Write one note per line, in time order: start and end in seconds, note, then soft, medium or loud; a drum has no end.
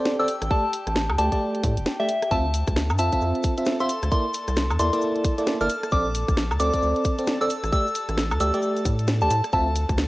0.00 0.16 C4 medium
0.00 2.32 G4 medium
0.00 0.16 A4 medium
0.00 0.16 D5 medium
0.00 2.32 G5 medium
0.05 snare loud
0.19 0.27 C4 medium
0.19 0.27 A4 medium
0.19 0.27 D5 loud
0.19 0.42 E6 loud
0.28 open hi-hat loud
0.42 0.49 A1 medium
0.42 cross-stick medium
0.42 closed hi-hat medium
0.51 0.64 A3 medium
0.51 0.64 G4 medium
0.51 0.64 D5 medium
0.51 0.74 A5 loud
0.51 kick loud
0.73 open hi-hat loud
0.87 1.11 A1 loud
0.87 cross-stick medium
0.87 closed hi-hat medium
0.96 snare loud
1.09 1.17 D2 loud
1.09 cross-stick medium
1.09 high woodblock medium
1.18 1.30 D2 loud
1.18 1.30 A3 medium
1.18 1.30 G4 medium
1.18 1.30 D5 medium
1.18 1.42 A5 medium
1.18 open hi-hat loud
1.32 1.74 A3 medium
1.32 1.74 G4 medium
1.32 1.74 D5 loud
1.32 kick medium
1.32 closed hi-hat medium
1.55 closed hi-hat soft
1.63 1.79 A2 loud
1.63 kick loud
1.63 open hi-hat loud
1.77 1.86 E1 loud
1.77 closed hi-hat medium
1.86 snare loud
2.00 2.08 A3 medium
2.00 2.08 G4 medium
2.00 2.09 D5 medium
2.00 2.23 E5 loud
2.09 open hi-hat loud
2.22 cross-stick medium
2.22 closed hi-hat medium
2.31 2.63 D2 loud
2.31 2.45 C4 medium
2.31 2.45 F4 medium
2.31 10.08 A4 medium
2.31 2.45 E5 medium
2.31 10.08 A5 medium
2.31 2.54 A5 loud
2.31 kick loud
2.31 cabasa soft
2.54 open hi-hat loud
2.54 cabasa medium
2.67 2.92 D2 loud
2.67 kick loud
2.67 cross-stick medium
2.67 closed hi-hat medium
2.67 cabasa soft
2.76 snare loud
2.76 cabasa medium
2.90 3.00 G2 loud
2.90 cross-stick medium
2.90 cabasa soft
2.90 high woodblock medium
2.98 3.10 F2 medium
2.98 3.10 C4 medium
2.98 3.10 F4 medium
2.98 3.10 E5 medium
2.98 3.22 A5 loud
2.98 open hi-hat loud
2.98 cabasa medium
3.12 3.54 C4 medium
3.12 3.54 F4 medium
3.12 3.54 E5 loud
3.12 kick medium
3.12 closed hi-hat medium
3.12 cabasa soft
3.21 3.33 F2 medium
3.21 cabasa medium
3.35 closed hi-hat soft
3.43 kick loud
3.43 open hi-hat loud
3.43 cabasa loud
3.57 3.77 C4 medium
3.57 3.77 F4 medium
3.57 3.77 E5 medium
3.57 closed hi-hat medium
3.57 cabasa soft
3.65 snare loud
3.65 cabasa medium
3.80 3.89 C4 medium
3.80 3.89 F4 medium
3.80 3.89 E5 loud
3.80 4.03 C6 loud
3.80 cabasa soft
3.89 open hi-hat loud
3.89 cabasa loud
4.02 4.10 D2 medium
4.02 cross-stick medium
4.02 closed hi-hat medium
4.02 cabasa soft
4.12 4.25 A#3 medium
4.12 4.25 E4 medium
4.12 4.25 A4 medium
4.12 4.25 D5 medium
4.12 4.35 C6 loud
4.12 kick loud
4.12 cabasa medium
4.34 open hi-hat loud
4.34 cabasa medium
4.48 4.72 C2 loud
4.48 cross-stick medium
4.48 closed hi-hat medium
4.48 cabasa soft
4.56 snare loud
4.56 cabasa medium
4.70 4.78 E2 loud
4.70 cross-stick medium
4.70 cabasa soft
4.70 high woodblock medium
4.79 4.91 E2 medium
4.79 4.91 A#3 medium
4.79 4.91 E4 medium
4.79 4.91 A4 medium
4.79 4.91 D5 medium
4.79 5.03 C6 medium
4.79 open hi-hat loud
4.79 cabasa loud
4.93 5.35 A#3 medium
4.93 5.35 E4 medium
4.93 5.35 A4 medium
4.93 5.35 D5 loud
4.93 closed hi-hat medium
4.93 cabasa soft
5.01 cabasa medium
5.16 closed hi-hat soft
5.24 kick loud
5.24 open hi-hat loud
5.24 cabasa medium
5.38 5.57 A#3 medium
5.38 5.57 E4 medium
5.38 5.57 A4 medium
5.38 5.57 D5 medium
5.38 closed hi-hat medium
5.38 cabasa soft
5.47 snare loud
5.47 cabasa medium
5.61 5.68 G1 medium
5.61 5.68 A#3 medium
5.61 5.68 E4 medium
5.61 5.68 A4 medium
5.61 5.68 D5 loud
5.61 5.84 F6 medium
5.61 cabasa soft
5.69 open hi-hat loud
5.69 cabasa loud
5.83 cross-stick medium
5.83 closed hi-hat medium
5.83 cabasa soft
5.91 6.24 A#1 loud
5.91 6.06 C4 medium
5.91 6.06 A4 medium
5.91 6.06 D5 medium
5.91 6.15 D6 loud
5.91 kick loud
5.91 cabasa medium
6.15 open hi-hat loud
6.15 cabasa loud
6.28 6.52 A#1 loud
6.28 kick loud
6.28 cross-stick medium
6.28 closed hi-hat medium
6.28 cabasa soft
6.37 snare loud
6.37 cabasa medium
6.51 6.58 D2 loud
6.51 cross-stick medium
6.51 cabasa soft
6.51 high woodblock medium
6.60 6.71 D2 medium
6.60 6.71 C4 medium
6.60 6.71 A4 medium
6.60 6.71 D5 medium
6.60 6.83 D6 loud
6.60 open hi-hat loud
6.60 cabasa loud
6.73 7.15 C4 medium
6.73 7.15 A4 medium
6.73 7.15 D5 loud
6.73 kick medium
6.73 closed hi-hat medium
6.73 cabasa soft
6.82 6.94 D2 medium
6.82 cabasa medium
6.96 closed hi-hat soft
7.05 kick loud
7.05 open hi-hat loud
7.05 cabasa loud
7.19 7.38 C4 medium
7.19 7.38 A4 medium
7.19 7.38 D5 medium
7.19 closed hi-hat medium
7.19 cabasa soft
7.27 snare loud
7.27 cabasa medium
7.41 7.49 C4 medium
7.41 7.49 A4 medium
7.41 7.49 D5 loud
7.41 7.64 E6 loud
7.41 cabasa soft
7.50 open hi-hat loud
7.50 cabasa loud
7.64 7.71 A1 medium
7.64 cross-stick medium
7.64 closed hi-hat medium
7.64 cabasa soft
7.72 7.86 A3 medium
7.72 7.86 G4 medium
7.72 7.86 D5 medium
7.72 7.96 E6 loud
7.72 kick loud
7.72 cabasa medium
7.87 cabasa soft
7.95 open hi-hat loud
7.95 cabasa loud
8.09 8.33 A1 loud
8.09 cross-stick medium
8.09 closed hi-hat medium
8.09 cabasa soft
8.18 snare loud
8.18 cabasa medium
8.31 8.39 D2 loud
8.31 cross-stick medium
8.31 cabasa soft
8.31 high woodblock medium
8.40 8.52 D2 medium
8.40 8.52 A3 medium
8.40 8.52 G4 medium
8.40 8.52 D5 medium
8.40 8.64 E6 medium
8.40 open hi-hat loud
8.40 cabasa loud
8.54 8.96 A3 medium
8.54 8.96 G4 medium
8.54 8.96 D5 loud
8.54 closed hi-hat medium
8.54 cabasa soft
8.62 cabasa medium
8.77 closed hi-hat soft
8.77 cabasa soft
8.85 9.23 A2 medium
8.85 kick loud
8.85 open hi-hat loud
8.85 cabasa loud
8.99 closed hi-hat medium
8.99 cabasa soft
9.08 snare loud
9.08 cabasa medium
9.21 9.29 D2 loud
9.21 9.30 A3 medium
9.21 9.30 G4 medium
9.21 9.30 D5 medium
9.21 9.45 A5 medium
9.21 cabasa soft
9.30 9.42 A2 medium
9.30 open hi-hat loud
9.30 cabasa medium
9.44 cross-stick medium
9.44 closed hi-hat medium
9.44 cabasa soft
9.53 9.85 D2 loud
9.53 9.67 C4 medium
9.53 9.67 F4 medium
9.53 9.67 E5 medium
9.53 9.76 A5 loud
9.53 kick loud
9.53 cabasa medium
9.76 open hi-hat loud
9.76 cabasa medium
9.89 10.08 D2 loud
9.89 kick loud
9.89 cross-stick medium
9.89 closed hi-hat medium
9.89 cabasa soft
9.98 snare loud
9.98 cabasa medium